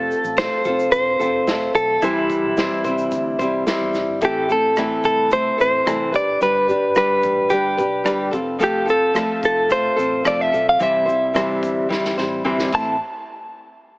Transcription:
Already playing: fingered electric bass F1, nylon-string guitar F3 A3 C4 F4 A4, clean electric guitar A4
0.11 shaker
0.24 fingered electric bass A1, shaker
0.37 nylon-string guitar A3 C4 F4 A4, clean electric guitar C5, snare, shaker
0.65 fingered electric bass F1, nylon-string guitar C4 F4 A4, kick, shaker
0.79 shaker
0.92 fingered electric bass E1, clean electric guitar C5, kick, shaker
1.19 fingered electric bass F1, nylon-string guitar C4 F4 A4, shaker
1.47 nylon-string guitar A3 C4 F4 A4, snare, shaker
1.74 fingered electric bass B1, clean electric guitar A4, shaker
2.02 fingered electric bass C2, nylon-string guitar C3 E3 G3 C4 E4 C5, clean electric guitar E4, kick, shaker
2.30 kick, shaker
2.44 fingered electric bass B1
2.57 nylon-string guitar G3 C4 E4 C5, snare, shaker
2.84 fingered electric bass C2, nylon-string guitar G3 C4 E4 C5, kick, shaker
2.98 shaker
3.11 fingered electric bass D2, kick, shaker
3.39 fingered electric bass C2, nylon-string guitar G3 C4 E4 C5, kick, shaker
3.67 nylon-string guitar G3 C4 E4 C5, snare, shaker
3.81 fingered electric bass E2
3.94 fingered electric bass F1, snare, shaker
4.08 fingered electric bass G1
4.21 fingered electric bass A1, nylon-string guitar A2 E3 A3 C4 E4 A4, clean electric guitar G4, kick, shaker
4.49 nylon-string guitar A3 C4 E4 A4, clean electric guitar A4, shaker
4.76 nylon-string guitar A2 E3 A3 C4 E4 A4, cross-stick, shaker
5.04 fingered electric bass C2, clean electric guitar A4, kick, shaker
5.31 nylon-string guitar A3 C4 E4 A4, clean electric guitar C5, kick, shaker
5.58 fingered electric bass A1, nylon-string guitar A3 C4 E4 A4, clean electric guitar C5, shaker
5.85 fingered electric bass C2, nylon-string guitar A2 E3 A3 C4 E4 A4, cross-stick, shaker
6.12 fingered electric bass G1, nylon-string guitar D4 G4 B4, clean electric guitar D5, kick, cross-stick, shaker
6.40 fingered electric bass G1, nylon-string guitar G3 D4 G4 B4, clean electric guitar B4, shaker
6.68 nylon-string guitar D4 G4 B4, shaker
6.95 nylon-string guitar G3 D4 G4 B4, clean electric guitar B4, cross-stick, shaker
7.23 fingered electric bass A1, kick, shaker
7.50 fingered electric bass G1, nylon-string guitar G3 D4 G4 B4, clean electric guitar G4, kick, shaker
7.77 fingered electric bass B1, nylon-string guitar D4 G4 B4, kick, shaker
8.04 fingered electric bass G1, nylon-string guitar G3 D4 G4 B4, cross-stick, shaker
8.31 fingered electric bass F1, nylon-string guitar C4 F4 A4, kick, shaker
8.59 nylon-string guitar F3 A3 C4 F4 A4, shaker
8.64 clean electric guitar G4
8.85 nylon-string guitar C4 F4 A4, shaker
8.90 clean electric guitar A4
9.14 nylon-string guitar F3 A3 C4 F4 A4, cross-stick, shaker
9.43 fingered electric bass F1, clean electric guitar A4, kick, shaker
9.69 nylon-string guitar A3 C4 F4 A4, clean electric guitar C5, kick, shaker
9.96 fingered electric bass A1, nylon-string guitar C4 F4 A4, shaker
10.24 fingered electric bass F1, nylon-string guitar F3 A3 C4 F4 A4, clean electric guitar D5, cross-stick, shaker
10.41 clean electric guitar E5
10.52 fingered electric bass B1, nylon-string guitar C4 F4 A4, shaker
10.69 clean electric guitar F5
10.79 fingered electric bass C2, nylon-string guitar C3 E3 G3 C4 E4 C5, clean electric guitar E5, kick, shaker
11.06 nylon-string guitar G3 C4 E4 C5, shaker
11.34 nylon-string guitar C3 E3 G3 C4 E4 C5, cross-stick, shaker
11.63 fingered electric bass G1, kick, shaker
11.89 fingered electric bass G1, nylon-string guitar G3 C4 E4 C5, kick, snare
12.04 snare
12.17 fingered electric bass A1, nylon-string guitar G3 C4 E4 C5, snare
12.44 fingered electric bass G1, nylon-string guitar C3 E3 G3 C4 E4 C5
12.59 snare
12.72 fingered electric bass A1, nylon-string guitar A2 E3 A3 C4 E4 C5, clean electric guitar A5, kick, crash

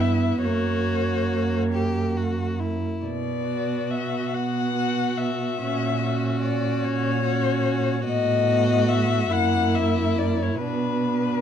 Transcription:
Already playing: cello G2, viola B3, violin E4
0.01 violin E5
0.43 cello F#2, viola A#3, violin F#4 C#5
1.73 violin G4
2.17 violin F#4
2.60 violin E4
3.05 cello B2, violin D5
3.47 viola B3, violin F#4
3.91 violin E5
4.34 cello B2, violin F#5
4.76 viola B3, violin F#4
5.18 violin E5
5.59 cello A#2, viola C#4, violin F#4
6.02 viola C#4, violin F#4
6.42 violin D5
6.84 cello A#2, violin C#5
7.24 viola C#4, violin F#4
8.04 cello A2, viola B3, violin F#4 D#5
8.89 violin E5
9.30 cello F#2, viola A#3, violin E4 F#5
9.75 violin E5
10.19 violin D5
10.42 violin C#5
10.63 cello B2, viola B3, violin D4 B4

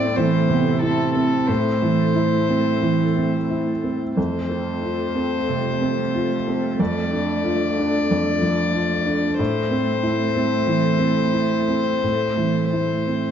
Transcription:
Already playing: felt piano A2 C4 E4, analog synth pad A3 E4 A4, cello C4, violin D5
0.16 felt piano E3, cello A3, violin C5
0.49 felt piano C3, cello B3
0.82 cello C4, felt piano E4, violin A4
1.14 felt piano C4, violin A4
1.47 felt piano A2, cello A3, violin C5
1.82 felt piano E3
2.15 felt piano E4
2.49 felt piano C4
2.82 felt piano E3
3.17 felt piano C4
3.49 felt piano E4
3.83 felt piano C4
4.17 felt piano F2, cello A3, analog synth pad C4 F4 A4, violin C5
4.49 felt piano C4
4.83 felt piano F4
5.15 felt piano C4
5.49 felt piano C3
5.81 felt piano C4
6.15 felt piano F4
6.48 felt piano C4
6.79 felt piano F2, analog synth pad D4, violin D5
7.12 felt piano D4
7.45 felt piano F4
7.79 felt piano D4
8.11 felt piano F2
8.42 felt piano F3
8.74 felt piano F4
9.06 felt piano D4
9.38 felt piano A2, cello A3, analog synth pad C4 E4 A4, violin C5
9.70 felt piano C4
10.03 felt piano E4
10.35 felt piano C4
10.67 felt piano E3
10.99 felt piano C4
11.33 felt piano E4
11.68 felt piano C4
12.03 felt piano A2
12.37 felt piano E3
12.73 felt piano E4
13.07 felt piano C4

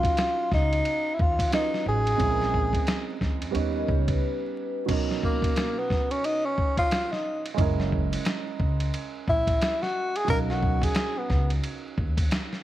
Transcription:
Already playing: grand piano F#3 C#4 D#4 F4 A#4, tenor saxophone F4
0.03 kick, ride
0.17 snare, hi-hat pedal, ride
0.52 upright bass C#2, tenor saxophone D#4, kick, snare
0.73 ride
0.85 ride
1.14 tenor saxophone E4
1.19 upright bass D#2, tenor saxophone F4, kick
1.39 kick, ride
1.51 grand piano F#3 C#4 D#4 F4 B4, tenor saxophone D#4, snare, hi-hat pedal, ride
1.74 snare
1.86 upright bass A1, tenor saxophone G#4
2.07 ride
2.16 upright bass A#1, grand piano G#3 C4 C#4, kick, ride
2.21 grand piano E4 G#4
2.29 grand piano A#4
2.42 snare
2.54 kick
2.73 kick, ride
2.87 snare, hi-hat pedal, ride
3.21 upright bass E2, kick, snare
3.42 ride
3.51 upright bass D#2, grand piano G3 B3 C#4, ride
3.56 grand piano D#4 B4
3.75 vibraphone A#4 D#5
3.87 upright bass C#2, vibraphone G4 C#5, kick
4.08 vibraphone B4, kick, ride
4.86 grand piano B2 F#3 C#4, kick, crash, ride
4.90 grand piano D#4 A#4
5.11 snare
5.23 tenor saxophone A#3, kick
5.42 kick, ride
5.56 snare, hi-hat pedal, ride
5.79 tenor saxophone B3
5.90 kick, snare
6.11 tenor saxophone C#4, ride
6.24 tenor saxophone D#4, ride
6.45 tenor saxophone C#4
6.58 kick
6.77 tenor saxophone F4, kick, ride
6.91 snare, hi-hat pedal, ride
7.12 tenor saxophone D#4, snare
7.46 ride
7.54 upright bass F#1, grand piano G#3 C#4 D#5, kick, ride
7.60 grand piano E4 A#4
7.80 snare
7.92 kick
8.13 ride
8.25 snare, hi-hat pedal, ride
8.60 upright bass C#2, kick
8.80 ride
8.94 ride
9.28 upright bass A#1, tenor saxophone E4, kick
9.47 kick, ride
9.62 snare, hi-hat pedal, ride
9.82 tenor saxophone F#4, snare
10.16 tenor saxophone G#4, ride
10.24 upright bass B1, grand piano F#3 C#4 D#4, kick, ride
10.30 tenor saxophone A#4, grand piano A#4 F5
10.50 tenor saxophone F#4, snare
10.63 kick
10.82 tenor saxophone G#4, kick, ride
10.95 snare, hi-hat pedal, ride
11.18 tenor saxophone B3
11.30 upright bass C#2, kick, snare
11.50 ride
11.64 ride
11.98 upright bass D#2, kick
12.17 kick, ride
12.31 snare, hi-hat pedal, ride
12.53 snare

